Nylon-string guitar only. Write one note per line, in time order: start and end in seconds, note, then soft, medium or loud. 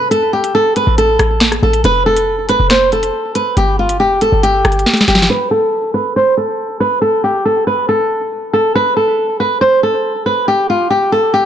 0.11 0.31 A4 medium
0.33 0.53 G4 medium
0.55 0.74 A4 medium
0.76 0.96 B4 medium
0.98 1.59 A4 medium
1.63 1.82 A4 medium
1.85 2.04 B4 loud
2.06 2.47 A4 medium
2.49 2.69 B4 medium
2.71 2.90 C5 medium
2.93 3.33 A4 medium
3.35 3.55 B4 medium
3.57 3.77 G4 loud
3.79 3.98 F4 medium
4.00 4.20 G4 medium
4.22 4.41 A4 medium
4.43 5.04 G4 medium
5.08 5.28 G4 medium
5.30 5.49 B4 loud
5.51 5.92 A4 medium
5.94 6.14 B4 medium
6.16 6.36 C5 medium
6.37 6.78 A4 medium
6.80 7.00 B4 medium
7.02 7.21 A4 medium
7.24 7.43 G4 medium
7.45 7.65 A4 medium
7.67 7.87 B4 medium
7.89 8.49 A4 medium
8.53 8.73 A4 medium
8.75 8.95 B4 loud
8.97 9.37 A4 medium
9.40 9.59 B4 medium
9.61 9.81 C5 medium
9.83 10.24 A4 medium
10.26 10.46 B4 medium
10.48 10.67 G4 medium
10.70 10.89 F4 medium
10.90 11.10 G4 medium
11.12 11.32 A4 medium
11.34 11.45 G4 medium